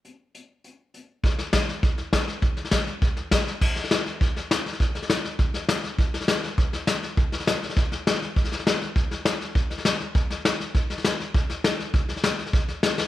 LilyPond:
\new DrumStaff \with { instrumentName = "Drums" } \drummode { \time 4/4 \tempo 4 = 202 hh4 hh4 hh4 hh4 | <bd sn>8 sn8 <hhp bd sn>8 sn8 <bd sn>8 sn8 <hhp bd sn>8 sn8 | <bd sn>8 sn16 sn16 <hhp bd sn>8 sn8 <bd sn>8 sn8 <hhp bd sn>8 sn8 | <cymc bd sn>8 sn16 sn16 <hhp sn>8 sn8 <bd sn>8 sn8 <hhp sn>8 sn16 sn16 |
<bd sn>8 sn16 sn16 <hhp sn>8 sn8 <bd sn>8 sn8 <hhp sn>8 sn8 | <bd sn>8 sn16 sn16 <hhp sn>8 sn8 <bd sn>8 sn8 <hhp sn>8 sn8 | <bd sn>8 sn16 sn16 <hhp sn>8 sn16 sn16 <bd sn>8 sn8 <hhp sn>8 sn8 | <bd sn>16 sn16 sn16 sn16 <hhp sn>8 sn8 <bd sn>8 sn8 <hhp sn>8 sn8 |
<bd sn>8 sn16 sn16 <hhp sn>8 sn8 <bd sn>8 sn8 <hhp sn>8 sn8 | <bd sn>8 sn16 sn16 <hhp sn>8 sn8 <bd sn>8 sn8 <hhp sn>8 sn8 | <bd sn>8 sn16 sn16 <hhp sn>8 sn16 sn16 <bd sn>8 sn8 <hhp sn>8 sn8 | }